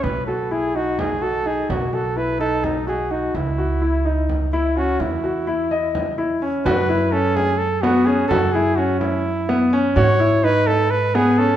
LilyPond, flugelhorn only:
\new Staff \with { instrumentName = "Flugelhorn" } { \time 7/8 \key fis \dorian \tempo 4 = 127 b'8 a'8 gis'8 fis'8 gis'8 a'8 gis'8 | fis'8 a'8 b'8 a'8 dis'8 gis'8 fis'8 | e'2 r8 e'8 fis'8 | e'2~ e'8 r4 |
b'4 a'8 gis'8 a'8 fis'8 gis'8 | a'8 gis'8 fis'8 e'4. r8 | cis''4 b'8 a'8 b'8 gis'8 a'8 | }